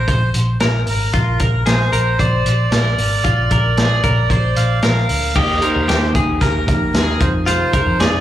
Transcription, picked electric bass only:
0, 0, Header, 1, 2, 480
1, 0, Start_track
1, 0, Tempo, 528169
1, 1031, Time_signature, 4, 2, 24, 8
1, 7457, End_track
2, 0, Start_track
2, 0, Title_t, "Picked electric bass"
2, 0, Program_c, 0, 34
2, 74, Note_on_c, 0, 34, 81
2, 270, Note_off_c, 0, 34, 0
2, 315, Note_on_c, 0, 34, 90
2, 511, Note_off_c, 0, 34, 0
2, 557, Note_on_c, 0, 34, 86
2, 752, Note_off_c, 0, 34, 0
2, 795, Note_on_c, 0, 32, 80
2, 991, Note_off_c, 0, 32, 0
2, 1036, Note_on_c, 0, 34, 94
2, 1231, Note_off_c, 0, 34, 0
2, 1277, Note_on_c, 0, 34, 84
2, 1472, Note_off_c, 0, 34, 0
2, 1513, Note_on_c, 0, 34, 83
2, 1709, Note_off_c, 0, 34, 0
2, 1757, Note_on_c, 0, 34, 87
2, 1952, Note_off_c, 0, 34, 0
2, 1995, Note_on_c, 0, 34, 85
2, 2191, Note_off_c, 0, 34, 0
2, 2228, Note_on_c, 0, 34, 87
2, 2427, Note_off_c, 0, 34, 0
2, 2471, Note_on_c, 0, 34, 85
2, 2668, Note_off_c, 0, 34, 0
2, 2712, Note_on_c, 0, 32, 81
2, 2909, Note_off_c, 0, 32, 0
2, 2953, Note_on_c, 0, 34, 89
2, 3149, Note_off_c, 0, 34, 0
2, 3191, Note_on_c, 0, 34, 93
2, 3388, Note_off_c, 0, 34, 0
2, 3426, Note_on_c, 0, 34, 85
2, 3626, Note_off_c, 0, 34, 0
2, 3674, Note_on_c, 0, 34, 89
2, 3870, Note_off_c, 0, 34, 0
2, 3908, Note_on_c, 0, 34, 86
2, 4107, Note_off_c, 0, 34, 0
2, 4151, Note_on_c, 0, 34, 84
2, 4348, Note_off_c, 0, 34, 0
2, 4391, Note_on_c, 0, 34, 75
2, 4588, Note_off_c, 0, 34, 0
2, 4629, Note_on_c, 0, 38, 81
2, 4827, Note_off_c, 0, 38, 0
2, 4872, Note_on_c, 0, 39, 95
2, 5069, Note_off_c, 0, 39, 0
2, 5236, Note_on_c, 0, 39, 87
2, 5333, Note_off_c, 0, 39, 0
2, 5349, Note_on_c, 0, 39, 96
2, 5547, Note_off_c, 0, 39, 0
2, 5592, Note_on_c, 0, 39, 92
2, 5789, Note_off_c, 0, 39, 0
2, 5829, Note_on_c, 0, 39, 91
2, 6073, Note_off_c, 0, 39, 0
2, 6073, Note_on_c, 0, 41, 81
2, 6269, Note_off_c, 0, 41, 0
2, 6307, Note_on_c, 0, 39, 91
2, 6506, Note_off_c, 0, 39, 0
2, 6553, Note_on_c, 0, 41, 103
2, 6946, Note_off_c, 0, 41, 0
2, 7148, Note_on_c, 0, 41, 96
2, 7248, Note_off_c, 0, 41, 0
2, 7269, Note_on_c, 0, 41, 93
2, 7457, Note_off_c, 0, 41, 0
2, 7457, End_track
0, 0, End_of_file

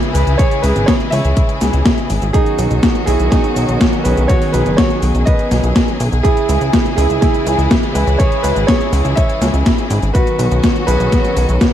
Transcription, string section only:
0, 0, Header, 1, 2, 480
1, 0, Start_track
1, 0, Key_signature, 4, "minor"
1, 0, Tempo, 487805
1, 387, Time_signature, 4, 2, 24, 8
1, 11542, End_track
2, 0, Start_track
2, 0, Title_t, "String section"
2, 0, Program_c, 0, 48
2, 0, Note_on_c, 0, 49, 85
2, 0, Note_on_c, 0, 52, 80
2, 0, Note_on_c, 0, 56, 80
2, 0, Note_on_c, 0, 64, 77
2, 0, Note_on_c, 0, 68, 94
2, 2269, Note_off_c, 0, 49, 0
2, 2269, Note_off_c, 0, 52, 0
2, 2269, Note_off_c, 0, 56, 0
2, 2269, Note_off_c, 0, 64, 0
2, 2269, Note_off_c, 0, 68, 0
2, 2306, Note_on_c, 0, 51, 90
2, 2306, Note_on_c, 0, 59, 78
2, 2306, Note_on_c, 0, 61, 76
2, 2307, Note_on_c, 0, 54, 80
2, 2307, Note_on_c, 0, 66, 95
2, 4207, Note_off_c, 0, 66, 0
2, 4227, Note_on_c, 0, 68, 94
2, 6108, Note_off_c, 0, 51, 0
2, 6108, Note_off_c, 0, 54, 0
2, 6108, Note_off_c, 0, 59, 0
2, 6108, Note_off_c, 0, 61, 0
2, 6148, Note_on_c, 0, 56, 81
2, 6149, Note_on_c, 0, 52, 80
2, 6149, Note_on_c, 0, 64, 78
2, 6150, Note_on_c, 0, 49, 85
2, 9948, Note_off_c, 0, 68, 0
2, 9949, Note_off_c, 0, 52, 0
2, 9949, Note_off_c, 0, 56, 0
2, 9949, Note_off_c, 0, 64, 0
2, 9950, Note_off_c, 0, 49, 0
2, 9985, Note_on_c, 0, 51, 89
2, 9985, Note_on_c, 0, 59, 80
2, 9986, Note_on_c, 0, 54, 81
2, 9986, Note_on_c, 0, 61, 82
2, 9986, Note_on_c, 0, 66, 100
2, 11542, Note_off_c, 0, 51, 0
2, 11542, Note_off_c, 0, 54, 0
2, 11542, Note_off_c, 0, 59, 0
2, 11542, Note_off_c, 0, 61, 0
2, 11542, Note_off_c, 0, 66, 0
2, 11542, End_track
0, 0, End_of_file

